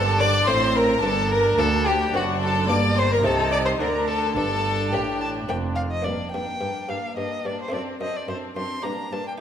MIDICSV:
0, 0, Header, 1, 8, 480
1, 0, Start_track
1, 0, Key_signature, -2, "minor"
1, 0, Tempo, 557103
1, 888, Time_signature, 3, 2, 24, 8
1, 8102, End_track
2, 0, Start_track
2, 0, Title_t, "Violin section"
2, 0, Program_c, 0, 48
2, 0, Note_on_c, 0, 81, 123
2, 163, Note_on_c, 0, 86, 116
2, 170, Note_off_c, 0, 81, 0
2, 400, Note_on_c, 0, 84, 123
2, 402, Note_off_c, 0, 86, 0
2, 639, Note_off_c, 0, 84, 0
2, 648, Note_on_c, 0, 82, 112
2, 873, Note_on_c, 0, 81, 113
2, 887, Note_off_c, 0, 82, 0
2, 1118, Note_on_c, 0, 82, 114
2, 1119, Note_off_c, 0, 81, 0
2, 1356, Note_on_c, 0, 81, 109
2, 1362, Note_off_c, 0, 82, 0
2, 1425, Note_off_c, 0, 81, 0
2, 1586, Note_on_c, 0, 79, 110
2, 1829, Note_off_c, 0, 79, 0
2, 1837, Note_on_c, 0, 78, 103
2, 2072, Note_on_c, 0, 81, 113
2, 2079, Note_off_c, 0, 78, 0
2, 2304, Note_on_c, 0, 86, 110
2, 2311, Note_off_c, 0, 81, 0
2, 2373, Note_off_c, 0, 86, 0
2, 2552, Note_on_c, 0, 84, 110
2, 2601, Note_off_c, 0, 84, 0
2, 2678, Note_on_c, 0, 82, 108
2, 2793, Note_on_c, 0, 81, 112
2, 2795, Note_off_c, 0, 82, 0
2, 2862, Note_off_c, 0, 81, 0
2, 3030, Note_on_c, 0, 86, 103
2, 3080, Note_off_c, 0, 86, 0
2, 3166, Note_on_c, 0, 84, 84
2, 3213, Note_off_c, 0, 84, 0
2, 3278, Note_on_c, 0, 82, 103
2, 3516, Note_off_c, 0, 82, 0
2, 3519, Note_on_c, 0, 81, 102
2, 3743, Note_off_c, 0, 81, 0
2, 3754, Note_on_c, 0, 81, 102
2, 4234, Note_on_c, 0, 79, 83
2, 4235, Note_off_c, 0, 81, 0
2, 4727, Note_off_c, 0, 79, 0
2, 5212, Note_on_c, 0, 67, 43
2, 5431, Note_off_c, 0, 67, 0
2, 5441, Note_on_c, 0, 67, 37
2, 5686, Note_off_c, 0, 67, 0
2, 5697, Note_on_c, 0, 67, 43
2, 5916, Note_off_c, 0, 67, 0
2, 5927, Note_on_c, 0, 67, 39
2, 6160, Note_off_c, 0, 67, 0
2, 6171, Note_on_c, 0, 67, 39
2, 6402, Note_off_c, 0, 67, 0
2, 6412, Note_on_c, 0, 67, 40
2, 6652, Note_off_c, 0, 67, 0
2, 6656, Note_on_c, 0, 69, 43
2, 6882, Note_off_c, 0, 69, 0
2, 6893, Note_on_c, 0, 69, 41
2, 7128, Note_off_c, 0, 69, 0
2, 7138, Note_on_c, 0, 69, 44
2, 7365, Note_off_c, 0, 69, 0
2, 7376, Note_on_c, 0, 69, 42
2, 7613, Note_off_c, 0, 69, 0
2, 7624, Note_on_c, 0, 67, 38
2, 7845, Note_off_c, 0, 67, 0
2, 7855, Note_on_c, 0, 67, 43
2, 8081, Note_off_c, 0, 67, 0
2, 8102, End_track
3, 0, Start_track
3, 0, Title_t, "Violin"
3, 0, Program_c, 1, 40
3, 0, Note_on_c, 1, 69, 99
3, 177, Note_on_c, 1, 74, 103
3, 190, Note_off_c, 1, 69, 0
3, 409, Note_on_c, 1, 72, 101
3, 422, Note_off_c, 1, 74, 0
3, 653, Note_on_c, 1, 70, 94
3, 666, Note_off_c, 1, 72, 0
3, 890, Note_off_c, 1, 70, 0
3, 898, Note_on_c, 1, 69, 94
3, 1132, Note_on_c, 1, 70, 101
3, 1145, Note_off_c, 1, 69, 0
3, 1371, Note_on_c, 1, 69, 103
3, 1384, Note_off_c, 1, 70, 0
3, 1614, Note_on_c, 1, 67, 92
3, 1627, Note_off_c, 1, 69, 0
3, 1848, Note_off_c, 1, 67, 0
3, 1858, Note_on_c, 1, 66, 92
3, 1927, Note_off_c, 1, 66, 0
3, 2098, Note_on_c, 1, 69, 85
3, 2324, Note_off_c, 1, 69, 0
3, 2328, Note_on_c, 1, 74, 92
3, 2573, Note_on_c, 1, 72, 101
3, 2586, Note_off_c, 1, 74, 0
3, 2687, Note_on_c, 1, 70, 85
3, 2700, Note_off_c, 1, 72, 0
3, 2806, Note_on_c, 1, 69, 91
3, 2819, Note_off_c, 1, 70, 0
3, 3029, Note_off_c, 1, 69, 0
3, 3034, Note_on_c, 1, 74, 96
3, 3083, Note_off_c, 1, 74, 0
3, 3148, Note_on_c, 1, 72, 76
3, 3198, Note_off_c, 1, 72, 0
3, 3265, Note_on_c, 1, 70, 82
3, 3513, Note_on_c, 1, 69, 81
3, 3525, Note_off_c, 1, 70, 0
3, 3752, Note_off_c, 1, 69, 0
3, 3757, Note_on_c, 1, 69, 89
3, 4251, Note_on_c, 1, 67, 74
3, 4264, Note_off_c, 1, 69, 0
3, 4483, Note_off_c, 1, 67, 0
3, 4488, Note_on_c, 1, 81, 79
3, 4557, Note_off_c, 1, 81, 0
3, 4726, Note_on_c, 1, 79, 66
3, 4795, Note_off_c, 1, 79, 0
3, 4959, Note_on_c, 1, 77, 74
3, 5011, Note_off_c, 1, 77, 0
3, 5094, Note_on_c, 1, 75, 72
3, 5207, Note_on_c, 1, 74, 62
3, 5220, Note_off_c, 1, 75, 0
3, 5439, Note_off_c, 1, 74, 0
3, 5445, Note_on_c, 1, 79, 68
3, 5935, Note_on_c, 1, 77, 60
3, 5948, Note_off_c, 1, 79, 0
3, 6174, Note_off_c, 1, 77, 0
3, 6179, Note_on_c, 1, 75, 59
3, 6427, Note_on_c, 1, 74, 54
3, 6440, Note_off_c, 1, 75, 0
3, 6544, Note_off_c, 1, 74, 0
3, 6565, Note_on_c, 1, 72, 55
3, 6661, Note_off_c, 1, 72, 0
3, 6666, Note_on_c, 1, 74, 54
3, 6735, Note_off_c, 1, 74, 0
3, 6902, Note_on_c, 1, 75, 61
3, 7035, Note_on_c, 1, 74, 49
3, 7048, Note_off_c, 1, 75, 0
3, 7136, Note_off_c, 1, 74, 0
3, 7141, Note_on_c, 1, 72, 60
3, 7210, Note_off_c, 1, 72, 0
3, 7384, Note_on_c, 1, 84, 67
3, 7612, Note_on_c, 1, 82, 60
3, 7625, Note_off_c, 1, 84, 0
3, 7861, Note_on_c, 1, 81, 60
3, 7874, Note_off_c, 1, 82, 0
3, 7980, Note_off_c, 1, 81, 0
3, 7992, Note_on_c, 1, 79, 60
3, 8038, Note_off_c, 1, 79, 0
3, 8102, End_track
4, 0, Start_track
4, 0, Title_t, "Violin section"
4, 0, Program_c, 2, 48
4, 0, Note_on_c, 2, 69, 99
4, 166, Note_on_c, 2, 74, 103
4, 168, Note_off_c, 2, 69, 0
4, 403, Note_off_c, 2, 74, 0
4, 408, Note_on_c, 2, 72, 106
4, 648, Note_off_c, 2, 72, 0
4, 652, Note_on_c, 2, 70, 105
4, 887, Note_on_c, 2, 69, 97
4, 889, Note_off_c, 2, 70, 0
4, 1126, Note_off_c, 2, 69, 0
4, 1131, Note_on_c, 2, 70, 94
4, 1360, Note_on_c, 2, 69, 93
4, 1363, Note_off_c, 2, 70, 0
4, 1429, Note_off_c, 2, 69, 0
4, 1599, Note_on_c, 2, 67, 96
4, 1668, Note_off_c, 2, 67, 0
4, 1834, Note_on_c, 2, 66, 91
4, 2073, Note_off_c, 2, 66, 0
4, 2081, Note_on_c, 2, 69, 104
4, 2320, Note_off_c, 2, 69, 0
4, 2320, Note_on_c, 2, 74, 93
4, 2555, Note_on_c, 2, 72, 89
4, 2559, Note_off_c, 2, 74, 0
4, 2676, Note_off_c, 2, 72, 0
4, 2681, Note_on_c, 2, 70, 86
4, 2790, Note_on_c, 2, 69, 96
4, 2799, Note_off_c, 2, 70, 0
4, 3033, Note_on_c, 2, 74, 92
4, 3034, Note_off_c, 2, 69, 0
4, 3154, Note_on_c, 2, 72, 73
4, 3156, Note_off_c, 2, 74, 0
4, 3267, Note_on_c, 2, 70, 81
4, 3275, Note_off_c, 2, 72, 0
4, 3336, Note_off_c, 2, 70, 0
4, 3510, Note_on_c, 2, 69, 84
4, 3743, Note_off_c, 2, 69, 0
4, 3753, Note_on_c, 2, 69, 100
4, 4235, Note_off_c, 2, 69, 0
4, 4239, Note_on_c, 2, 67, 71
4, 4719, Note_off_c, 2, 67, 0
4, 5219, Note_on_c, 2, 62, 46
4, 5452, Note_off_c, 2, 62, 0
4, 5462, Note_on_c, 2, 62, 38
4, 5697, Note_off_c, 2, 62, 0
4, 5709, Note_on_c, 2, 62, 39
4, 5938, Note_off_c, 2, 62, 0
4, 5949, Note_on_c, 2, 62, 40
4, 6177, Note_off_c, 2, 62, 0
4, 6187, Note_on_c, 2, 62, 41
4, 6416, Note_off_c, 2, 62, 0
4, 6426, Note_on_c, 2, 62, 42
4, 6653, Note_off_c, 2, 62, 0
4, 6663, Note_on_c, 2, 62, 47
4, 6898, Note_off_c, 2, 62, 0
4, 6907, Note_on_c, 2, 62, 38
4, 7131, Note_off_c, 2, 62, 0
4, 7141, Note_on_c, 2, 62, 45
4, 7368, Note_off_c, 2, 62, 0
4, 7379, Note_on_c, 2, 62, 41
4, 7606, Note_off_c, 2, 62, 0
4, 7616, Note_on_c, 2, 62, 43
4, 7850, Note_off_c, 2, 62, 0
4, 7861, Note_on_c, 2, 62, 42
4, 8094, Note_off_c, 2, 62, 0
4, 8102, End_track
5, 0, Start_track
5, 0, Title_t, "Viola section"
5, 0, Program_c, 3, 48
5, 0, Note_on_c, 3, 62, 76
5, 399, Note_off_c, 3, 62, 0
5, 403, Note_on_c, 3, 60, 86
5, 880, Note_on_c, 3, 62, 79
5, 883, Note_off_c, 3, 60, 0
5, 1820, Note_off_c, 3, 62, 0
5, 1832, Note_on_c, 3, 62, 78
5, 2306, Note_off_c, 3, 62, 0
5, 2308, Note_on_c, 3, 58, 80
5, 2787, Note_on_c, 3, 63, 80
5, 2792, Note_off_c, 3, 58, 0
5, 3274, Note_off_c, 3, 63, 0
5, 3277, Note_on_c, 3, 62, 78
5, 3749, Note_off_c, 3, 62, 0
5, 3759, Note_on_c, 3, 62, 74
5, 5017, Note_off_c, 3, 62, 0
5, 5212, Note_on_c, 3, 58, 39
5, 5445, Note_off_c, 3, 58, 0
5, 5455, Note_on_c, 3, 58, 39
5, 5689, Note_off_c, 3, 58, 0
5, 5699, Note_on_c, 3, 58, 37
5, 5925, Note_off_c, 3, 58, 0
5, 5935, Note_on_c, 3, 58, 40
5, 6163, Note_off_c, 3, 58, 0
5, 6174, Note_on_c, 3, 58, 39
5, 6402, Note_off_c, 3, 58, 0
5, 6413, Note_on_c, 3, 58, 44
5, 6652, Note_off_c, 3, 58, 0
5, 6652, Note_on_c, 3, 60, 45
5, 6888, Note_off_c, 3, 60, 0
5, 6898, Note_on_c, 3, 60, 39
5, 7133, Note_off_c, 3, 60, 0
5, 7143, Note_on_c, 3, 60, 41
5, 7371, Note_off_c, 3, 60, 0
5, 7382, Note_on_c, 3, 60, 39
5, 7616, Note_off_c, 3, 60, 0
5, 7619, Note_on_c, 3, 58, 42
5, 7849, Note_off_c, 3, 58, 0
5, 7860, Note_on_c, 3, 58, 40
5, 8094, Note_off_c, 3, 58, 0
5, 8102, End_track
6, 0, Start_track
6, 0, Title_t, "Harpsichord"
6, 0, Program_c, 4, 6
6, 0, Note_on_c, 4, 43, 75
6, 0, Note_on_c, 4, 57, 60
6, 0, Note_on_c, 4, 60, 62
6, 0, Note_on_c, 4, 62, 69
6, 281, Note_off_c, 4, 57, 0
6, 284, Note_off_c, 4, 60, 0
6, 284, Note_off_c, 4, 62, 0
6, 380, Note_off_c, 4, 43, 0
6, 415, Note_on_c, 4, 57, 55
6, 416, Note_on_c, 4, 45, 71
6, 419, Note_on_c, 4, 60, 61
6, 421, Note_on_c, 4, 62, 67
6, 757, Note_off_c, 4, 57, 0
6, 760, Note_off_c, 4, 60, 0
6, 761, Note_off_c, 4, 62, 0
6, 856, Note_off_c, 4, 45, 0
6, 887, Note_on_c, 4, 43, 65
6, 1331, Note_off_c, 4, 43, 0
6, 1365, Note_on_c, 4, 38, 78
6, 1366, Note_on_c, 4, 58, 62
6, 1367, Note_on_c, 4, 62, 65
6, 1710, Note_off_c, 4, 58, 0
6, 1711, Note_off_c, 4, 62, 0
6, 1809, Note_off_c, 4, 38, 0
6, 1843, Note_on_c, 4, 42, 66
6, 1844, Note_on_c, 4, 57, 58
6, 1848, Note_on_c, 4, 60, 55
6, 1853, Note_on_c, 4, 62, 55
6, 2286, Note_off_c, 4, 42, 0
6, 2286, Note_off_c, 4, 57, 0
6, 2289, Note_off_c, 4, 60, 0
6, 2291, Note_off_c, 4, 62, 0
6, 2319, Note_on_c, 4, 43, 69
6, 2321, Note_on_c, 4, 58, 53
6, 2326, Note_on_c, 4, 62, 51
6, 2763, Note_off_c, 4, 43, 0
6, 2763, Note_off_c, 4, 58, 0
6, 2766, Note_off_c, 4, 62, 0
6, 2789, Note_on_c, 4, 48, 74
6, 2789, Note_on_c, 4, 57, 56
6, 2797, Note_on_c, 4, 60, 58
6, 2803, Note_on_c, 4, 63, 56
6, 3240, Note_off_c, 4, 48, 0
6, 3241, Note_off_c, 4, 57, 0
6, 3245, Note_off_c, 4, 60, 0
6, 3247, Note_off_c, 4, 63, 0
6, 3279, Note_on_c, 4, 50, 67
6, 3284, Note_on_c, 4, 60, 52
6, 3291, Note_on_c, 4, 62, 51
6, 3730, Note_off_c, 4, 50, 0
6, 3733, Note_off_c, 4, 60, 0
6, 3737, Note_off_c, 4, 62, 0
6, 3764, Note_on_c, 4, 43, 63
6, 4216, Note_off_c, 4, 43, 0
6, 4246, Note_on_c, 4, 45, 68
6, 4249, Note_on_c, 4, 58, 58
6, 4258, Note_on_c, 4, 62, 57
6, 4599, Note_off_c, 4, 58, 0
6, 4604, Note_off_c, 4, 62, 0
6, 4698, Note_off_c, 4, 45, 0
6, 4730, Note_on_c, 4, 41, 67
6, 4737, Note_on_c, 4, 58, 51
6, 4738, Note_on_c, 4, 62, 60
6, 5085, Note_off_c, 4, 58, 0
6, 5086, Note_off_c, 4, 62, 0
6, 5183, Note_off_c, 4, 41, 0
6, 5188, Note_on_c, 4, 58, 32
6, 5204, Note_on_c, 4, 62, 33
6, 5219, Note_on_c, 4, 43, 36
6, 5435, Note_off_c, 4, 43, 0
6, 5466, Note_on_c, 4, 43, 37
6, 5679, Note_off_c, 4, 43, 0
6, 5693, Note_on_c, 4, 43, 41
6, 5912, Note_off_c, 4, 43, 0
6, 5934, Note_on_c, 4, 43, 34
6, 6154, Note_off_c, 4, 43, 0
6, 6181, Note_on_c, 4, 43, 37
6, 6397, Note_off_c, 4, 43, 0
6, 6422, Note_on_c, 4, 43, 41
6, 6611, Note_off_c, 4, 58, 0
6, 6619, Note_off_c, 4, 62, 0
6, 6620, Note_on_c, 4, 57, 32
6, 6634, Note_on_c, 4, 60, 34
6, 6637, Note_off_c, 4, 43, 0
6, 6648, Note_on_c, 4, 62, 34
6, 6661, Note_on_c, 4, 42, 37
6, 6877, Note_off_c, 4, 42, 0
6, 6900, Note_on_c, 4, 42, 38
6, 7117, Note_off_c, 4, 42, 0
6, 7139, Note_on_c, 4, 42, 40
6, 7356, Note_off_c, 4, 42, 0
6, 7380, Note_on_c, 4, 42, 38
6, 7571, Note_off_c, 4, 57, 0
6, 7578, Note_off_c, 4, 60, 0
6, 7585, Note_off_c, 4, 62, 0
6, 7596, Note_off_c, 4, 42, 0
6, 7601, Note_on_c, 4, 62, 34
6, 7611, Note_on_c, 4, 67, 36
6, 7627, Note_on_c, 4, 43, 39
6, 7839, Note_off_c, 4, 43, 0
6, 7865, Note_on_c, 4, 43, 39
6, 8074, Note_off_c, 4, 62, 0
6, 8078, Note_off_c, 4, 43, 0
6, 8079, Note_off_c, 4, 67, 0
6, 8102, End_track
7, 0, Start_track
7, 0, Title_t, "Cello section"
7, 0, Program_c, 5, 48
7, 0, Note_on_c, 5, 43, 96
7, 408, Note_on_c, 5, 45, 88
7, 413, Note_off_c, 5, 43, 0
7, 877, Note_off_c, 5, 45, 0
7, 893, Note_on_c, 5, 43, 96
7, 1359, Note_off_c, 5, 43, 0
7, 1366, Note_on_c, 5, 38, 88
7, 1834, Note_off_c, 5, 38, 0
7, 1843, Note_on_c, 5, 42, 88
7, 2311, Note_off_c, 5, 42, 0
7, 2320, Note_on_c, 5, 43, 93
7, 2797, Note_off_c, 5, 43, 0
7, 2798, Note_on_c, 5, 48, 88
7, 3279, Note_off_c, 5, 48, 0
7, 3279, Note_on_c, 5, 50, 84
7, 3755, Note_off_c, 5, 50, 0
7, 3767, Note_on_c, 5, 43, 81
7, 4251, Note_on_c, 5, 45, 85
7, 4252, Note_off_c, 5, 43, 0
7, 4733, Note_on_c, 5, 41, 80
7, 4736, Note_off_c, 5, 45, 0
7, 5208, Note_off_c, 5, 41, 0
7, 5219, Note_on_c, 5, 43, 47
7, 5288, Note_off_c, 5, 43, 0
7, 5457, Note_on_c, 5, 43, 44
7, 5526, Note_off_c, 5, 43, 0
7, 5699, Note_on_c, 5, 43, 47
7, 5768, Note_off_c, 5, 43, 0
7, 5936, Note_on_c, 5, 43, 45
7, 6005, Note_off_c, 5, 43, 0
7, 6176, Note_on_c, 5, 43, 46
7, 6244, Note_off_c, 5, 43, 0
7, 6417, Note_on_c, 5, 43, 45
7, 6486, Note_off_c, 5, 43, 0
7, 6654, Note_on_c, 5, 42, 46
7, 6723, Note_off_c, 5, 42, 0
7, 6898, Note_on_c, 5, 42, 47
7, 6966, Note_off_c, 5, 42, 0
7, 7134, Note_on_c, 5, 42, 48
7, 7203, Note_off_c, 5, 42, 0
7, 7378, Note_on_c, 5, 42, 47
7, 7447, Note_off_c, 5, 42, 0
7, 7619, Note_on_c, 5, 43, 46
7, 7688, Note_off_c, 5, 43, 0
7, 7856, Note_on_c, 5, 43, 48
7, 7925, Note_off_c, 5, 43, 0
7, 8102, End_track
8, 0, Start_track
8, 0, Title_t, "Double bass section"
8, 0, Program_c, 6, 48
8, 0, Note_on_c, 6, 31, 94
8, 409, Note_on_c, 6, 33, 85
8, 412, Note_off_c, 6, 31, 0
8, 877, Note_off_c, 6, 33, 0
8, 883, Note_on_c, 6, 31, 95
8, 1354, Note_off_c, 6, 31, 0
8, 1360, Note_on_c, 6, 38, 86
8, 1831, Note_off_c, 6, 38, 0
8, 1842, Note_on_c, 6, 30, 91
8, 2310, Note_off_c, 6, 30, 0
8, 2321, Note_on_c, 6, 31, 94
8, 2795, Note_on_c, 6, 36, 84
8, 2798, Note_off_c, 6, 31, 0
8, 3278, Note_off_c, 6, 36, 0
8, 3284, Note_on_c, 6, 38, 84
8, 3758, Note_off_c, 6, 38, 0
8, 3770, Note_on_c, 6, 31, 86
8, 4253, Note_off_c, 6, 31, 0
8, 4255, Note_on_c, 6, 33, 77
8, 4737, Note_off_c, 6, 33, 0
8, 4740, Note_on_c, 6, 29, 75
8, 5212, Note_off_c, 6, 29, 0
8, 8102, End_track
0, 0, End_of_file